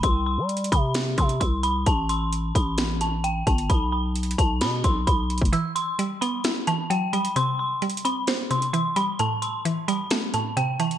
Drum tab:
HH |x-----------x-x-x-x-----x-----x--x--x-----x-----|x-----x-----x-----x-----x-----x-----x-----x--x--|x-----------x-x-x-x-----x-----x-----x-----x-x-x-|x-----x-----x-----x-----x-----x-----x-----x--x--|
SD |------------------------o-----------------------|------------------------o-----------------------|------------------------o-----------------------|------------------------o-----------------------|
BD |o-----------------o-----------o-----o-----------|o-----------------o-----------------------o-----|o-----------------o-----------o-----o--------o--|------------------------------------------------|

HH |x-----------x-x-x-x-----x-----x--x--x-----x-----|x-----x-----x-----x-----x-----x-----x-----x--x--|
SD |------------------------o-----------------------|------------------------o-----------------------|
BD |------------------------------------------------|------------------------------------------------|